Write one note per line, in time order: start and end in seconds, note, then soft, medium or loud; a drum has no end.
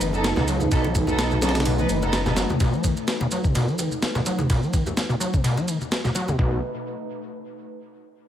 0.00 0.33 F#1 medium
0.00 0.12 D#3 loud
0.00 6.35 A3 medium
0.00 6.35 D#4 medium
0.00 6.35 B4 medium
0.00 ride medium
0.00 muted conga medium
0.00 shaker medium
0.13 0.34 B3 medium
0.13 0.34 D#4 medium
0.13 0.34 A4 medium
0.13 high conga medium
0.13 shaker soft
0.24 snare loud
0.24 ride medium
0.24 muted conga medium
0.24 shaker soft
0.36 0.68 C#2 loud
0.36 0.43 B2 medium
0.36 0.43 B3 medium
0.36 0.43 D#4 medium
0.36 0.43 A4 medium
0.36 snare medium
0.36 low conga medium
0.36 shaker soft
0.48 0.63 F#3 medium
0.48 ride medium
0.48 shaker medium
0.60 0.70 B2 medium
0.60 muted conga soft
0.60 high conga medium
0.60 low conga medium
0.60 shaker soft
0.71 1.86 B1 loud
0.71 0.87 B2 loud
0.71 0.79 B3 loud
0.71 0.79 D#4 medium
0.71 0.79 A4 loud
0.71 kick loud
0.71 ride medium
0.71 shaker soft
0.84 0.98 F#3 medium
0.84 muted conga medium
0.84 shaker soft
0.95 1.06 D#3 loud
0.95 kick medium
0.95 ride medium
0.95 high conga loud
0.95 shaker medium
1.07 1.40 B3 medium
1.07 1.40 D#4 medium
1.07 1.40 A4 medium
1.07 low conga loud
1.07 shaker soft
1.19 snare loud
1.19 ride medium
1.19 muted conga medium
1.19 shaker soft
1.31 1.38 B2 medium
1.31 high conga medium
1.31 shaker soft
1.42 1.58 F#3 medium
1.42 1.49 B3 medium
1.42 1.49 D#4 medium
1.42 1.49 A4 medium
1.42 snare medium
1.42 ride medium
1.42 muted conga medium
1.42 shaker medium
1.49 snare medium
1.49 ride medium
1.55 1.65 B2 medium
1.55 snare medium
1.55 ride medium
1.55 shaker soft
1.60 snare medium
1.60 ride medium
1.66 1.81 B2 loud
1.66 ride medium
1.66 high conga loud
1.66 shaker soft
1.79 1.92 F#3 medium
1.79 1.85 B3 medium
1.79 1.85 D#4 medium
1.79 1.85 B4 medium
1.79 muted conga medium
1.79 shaker soft
1.89 2.45 F#1 loud
1.89 2.01 D#3 loud
1.89 ride medium
1.89 shaker medium
2.02 2.23 B3 medium
2.02 2.23 D#4 medium
2.02 2.23 A4 medium
2.02 muted conga medium
2.02 high conga medium
2.02 shaker soft
2.13 snare loud
2.13 ride medium
2.13 shaker soft
2.26 2.32 B2 medium
2.26 2.32 B3 medium
2.26 2.32 D#4 medium
2.26 2.32 A4 medium
2.26 snare soft
2.26 low conga loud
2.26 shaker soft
2.37 2.51 F#3 medium
2.37 snare loud
2.37 ride medium
2.37 muted conga medium
2.37 shaker medium
2.49 2.59 B2 medium
2.49 high conga loud
2.49 low conga medium
2.49 shaker soft
2.60 2.75 B2 loud
2.60 kick loud
2.60 ride medium
2.60 muted conga medium
2.60 shaker soft
2.73 2.86 F#3 medium
2.73 shaker soft
2.84 2.95 D#3 loud
2.84 kick medium
2.84 ride medium
2.84 high conga medium
2.84 shaker medium
2.97 muted conga medium
2.97 shaker soft
3.07 snare loud
3.07 ride medium
3.07 shaker soft
3.20 3.27 B2 medium
3.20 muted conga medium
3.20 high conga medium
3.20 shaker soft
3.31 3.46 F#3 medium
3.31 ride medium
3.31 shaker medium
3.44 3.54 B2 medium
3.44 kick medium
3.44 shaker soft
3.55 3.70 B2 loud
3.55 ride medium
3.55 muted conga soft
3.55 high conga loud
3.55 shaker soft
3.68 3.80 F#3 medium
3.68 shaker soft
3.79 3.89 D#3 loud
3.79 ride medium
3.79 muted conga medium
3.79 shaker medium
3.92 high conga medium
3.92 shaker soft
4.02 snare loud
4.02 ride medium
4.02 shaker soft
4.15 4.21 B2 medium
4.15 snare soft
4.15 muted conga soft
4.15 low conga medium
4.15 shaker soft
4.26 4.40 F#3 medium
4.26 ride medium
4.26 shaker medium
4.39 4.48 B2 medium
4.39 muted conga medium
4.39 high conga medium
4.39 low conga medium
4.39 shaker soft
4.50 4.64 B2 loud
4.50 kick loud
4.50 ride medium
4.50 shaker soft
4.62 4.74 F#3 medium
4.62 shaker soft
4.73 4.84 D#3 loud
4.73 kick medium
4.73 ride medium
4.73 muted conga medium
4.73 high conga medium
4.73 shaker medium
4.86 low conga medium
4.86 shaker soft
4.97 snare loud
4.97 ride medium
4.97 muted conga medium
4.97 shaker soft
5.09 5.15 B2 medium
5.09 high conga medium
5.09 shaker soft
5.20 5.35 F#3 medium
5.20 ride medium
5.20 shaker medium
5.33 5.42 B2 medium
5.33 kick medium
5.33 muted conga medium
5.33 shaker soft
5.44 5.58 B2 loud
5.44 ride medium
5.44 high conga medium
5.44 shaker soft
5.57 5.69 F#3 medium
5.57 muted conga medium
5.57 shaker soft
5.68 5.78 D#3 loud
5.68 ride medium
5.68 shaker medium
5.81 high conga medium
5.81 shaker soft
5.92 snare loud
5.92 ride medium
5.92 muted conga soft
5.92 shaker soft
6.04 6.10 B2 medium
6.04 snare soft
6.04 low conga medium
6.04 shaker soft
6.15 6.29 F#3 medium
6.15 ride medium
6.15 muted conga medium
6.15 shaker medium
6.28 6.37 B2 medium
6.28 high conga medium
6.28 low conga medium
6.28 shaker soft
6.39 6.61 B1 loud
6.39 6.61 B2 loud
6.39 kick loud